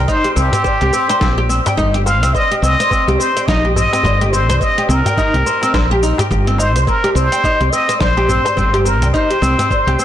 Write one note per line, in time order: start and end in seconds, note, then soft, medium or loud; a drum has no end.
0.08 0.23 D#4 loud
0.08 0.35 C5 loud
0.08 kick loud
0.08 shaker soft
0.24 0.31 G4 medium
0.24 closed hi-hat soft
0.36 0.48 C2 medium
0.36 0.52 C4 medium
0.36 1.46 G4 medium
0.36 shaker medium
0.52 0.64 C4 medium
0.52 closed hi-hat medium
0.52 darbuka dum loud
0.52 shaker soft
0.64 0.79 C5 medium
0.64 kick loud
0.64 shaker soft
0.81 0.90 C2 medium
0.81 0.93 G4 loud
0.81 closed hi-hat soft
0.93 1.09 C4 medium
0.93 darbuka ka soft
0.93 shaker medium
1.09 1.21 C5 loud
1.09 closed hi-hat medium
1.09 darbuka tek medium
1.09 shaker soft
1.21 1.59 A#1 medium
1.21 1.37 C4 medium
1.21 kick loud
1.21 snare medium
1.21 shaker soft
1.38 1.48 G4 loud
1.38 darbuka ka medium
1.49 1.59 C4 medium
1.49 shaker medium
1.66 1.77 G5 medium
1.66 closed hi-hat medium
1.66 darbuka tek medium
1.66 darbuka dum medium
1.66 shaker soft
1.77 2.22 G1 loud
1.77 1.93 D#4 loud
1.77 kick loud
1.77 shaker soft
1.94 2.01 G4 medium
1.94 closed hi-hat soft
2.06 2.22 C4 medium
2.06 2.35 F5 loud
2.06 darbuka ka medium
2.06 darbuka tek medium
2.06 shaker medium
2.22 2.31 C2 medium
2.22 2.34 C4 medium
2.22 closed hi-hat medium
2.22 shaker soft
2.34 2.50 C5 medium
2.34 2.61 D#5 loud
2.34 kick loud
2.34 shaker soft
2.51 2.62 G4 loud
2.51 closed hi-hat soft
2.62 2.75 C2 medium
2.62 2.79 C4 medium
2.62 3.20 D#5 loud
2.62 darbuka ka soft
2.62 shaker medium
2.80 2.91 C5 medium
2.80 closed hi-hat medium
2.80 shaker soft
2.91 3.07 C4 medium
2.91 kick loud
2.91 shaker soft
3.07 3.16 C2 medium
3.07 3.18 G4 loud
3.07 closed hi-hat soft
3.18 3.29 C4 medium
3.18 3.48 C5 loud
3.18 shaker medium
3.37 3.47 G5 medium
3.37 closed hi-hat medium
3.37 shaker soft
3.47 3.85 A#1 medium
3.47 3.63 D#4 loud
3.47 3.75 D#5 loud
3.47 kick loud
3.47 snare medium
3.47 shaker soft
3.65 3.71 G4 medium
3.65 darbuka tek medium
3.75 3.92 C4 medium
3.75 4.33 D#5 loud
3.75 darbuka dum medium
3.75 shaker medium
3.93 4.04 C4 medium
3.93 closed hi-hat soft
3.93 darbuka tek medium
3.93 shaker soft
4.03 4.49 G1 loud
4.03 4.19 C5 medium
4.03 kick loud
4.03 darbuka dum medium
4.03 shaker soft
4.21 4.32 G4 medium
4.21 closed hi-hat soft
4.21 darbuka tek medium
4.31 4.49 C4 medium
4.31 4.61 C5 medium
4.31 shaker medium
4.49 4.57 C2 medium
4.49 4.60 C5 loud
4.49 closed hi-hat medium
4.49 mid tom medium
4.49 shaker soft
4.60 4.77 C4 medium
4.60 4.89 D#5 loud
4.60 kick loud
4.60 shaker soft
4.78 4.88 G4 loud
4.78 closed hi-hat soft
4.88 5.01 C2 medium
4.88 4.99 C4 medium
4.88 6.02 A#4 medium
4.88 shaker medium
5.06 5.17 G5 medium
5.06 closed hi-hat medium
5.06 darbuka dum medium
5.06 shaker soft
5.18 5.33 D#4 loud
5.18 kick loud
5.18 shaker soft
5.34 5.42 C2 medium
5.34 5.41 G4 medium
5.34 closed hi-hat soft
5.46 5.62 C4 medium
5.46 darbuka ka soft
5.46 shaker medium
5.62 5.74 C4 medium
5.62 closed hi-hat soft
5.62 darbuka tek medium
5.62 shaker soft
5.74 6.12 A#1 medium
5.74 5.89 C5 medium
5.74 kick loud
5.74 snare medium
5.74 shaker soft
5.90 6.02 G4 loud
5.90 darbuka ka soft
6.03 6.18 D#4 medium
6.03 shaker medium
6.18 6.26 G4 medium
6.18 closed hi-hat soft
6.18 darbuka tek medium
6.18 darbuka dum loud
6.18 shaker soft
6.31 6.76 G1 loud
6.31 6.46 G4 medium
6.31 kick loud
6.31 shaker soft
6.47 6.58 C4 medium
6.47 closed hi-hat soft
6.58 6.69 D#4 medium
6.58 6.88 C5 medium
6.58 darbuka ka medium
6.58 darbuka tek medium
6.58 shaker medium
6.76 6.84 C2 medium
6.76 6.86 C5 medium
6.76 closed hi-hat medium
6.76 shaker soft
6.87 7.03 C4 medium
6.87 7.16 A#4 medium
6.87 kick loud
6.87 shaker soft
7.04 7.14 G4 loud
7.04 closed hi-hat soft
7.15 7.27 C2 medium
7.15 7.25 C4 medium
7.15 7.72 C5 loud
7.15 darbuka ka soft
7.15 shaker medium
7.32 7.43 G5 medium
7.32 closed hi-hat medium
7.32 shaker soft
7.44 7.59 D#4 medium
7.44 kick loud
7.44 shaker soft
7.60 7.69 C2 medium
7.60 7.67 G4 medium
7.60 closed hi-hat soft
7.71 7.88 C4 medium
7.71 8.01 D#5 loud
7.71 shaker medium
7.89 8.00 C4 medium
7.89 closed hi-hat medium
7.89 shaker soft
8.00 8.38 A#1 medium
8.00 8.86 C5 loud
8.00 8.16 C5 medium
8.00 kick loud
8.00 snare medium
8.00 shaker soft
8.17 8.28 G4 loud
8.17 darbuka tek medium
8.28 8.45 C4 medium
8.28 darbuka dum medium
8.28 shaker medium
8.45 8.56 C5 loud
8.45 closed hi-hat soft
8.45 darbuka tek medium
8.45 shaker soft
8.57 9.02 G1 loud
8.57 8.73 C4 medium
8.57 kick loud
8.57 darbuka dum medium
8.57 shaker soft
8.74 8.84 G4 loud
8.74 closed hi-hat soft
8.74 darbuka tek medium
8.85 8.95 C4 medium
8.85 9.13 A#4 medium
8.85 shaker medium
9.02 9.10 C2 medium
9.02 9.13 G5 medium
9.02 closed hi-hat medium
9.02 mid tom medium
9.02 shaker soft
9.13 9.29 D#4 loud
9.13 10.05 C5 loud
9.13 kick loud
9.13 shaker soft
9.30 9.37 G4 medium
9.30 closed hi-hat soft
9.42 9.54 C2 loud
9.42 9.58 C4 medium
9.42 shaker medium
9.59 9.70 C4 medium
9.59 closed hi-hat medium
9.59 darbuka dum medium
9.59 shaker soft
9.71 9.86 C5 medium
9.71 kick loud
9.71 shaker soft
9.87 9.95 C2 medium
9.87 9.98 G4 loud
9.87 closed hi-hat soft
9.99 10.05 C4 medium
9.99 darbuka ka soft
9.99 shaker medium